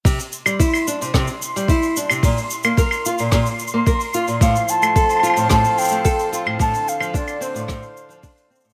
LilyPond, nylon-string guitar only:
\new Staff \with { instrumentName = "Nylon-string guitar" } { \clef bass \time 4/4 \key bes \lydian \tempo 4 = 110 c16 r8 g16 e'8 d'16 c16 c16 r8 g16 e'8 d'16 c16 | bes,16 r8 bes16 bes'8 f'16 bes,16 bes,16 r8 bes16 bes'8 f'16 bes,16 | a,16 r8 a16 a'8 f'16 a,16 a,16 r8 a16 a'8 f'16 a,16 | a,16 r8 f16 d'8 c'16 a,16 a,16 r8 f16 d'8 c'16 a,16 | }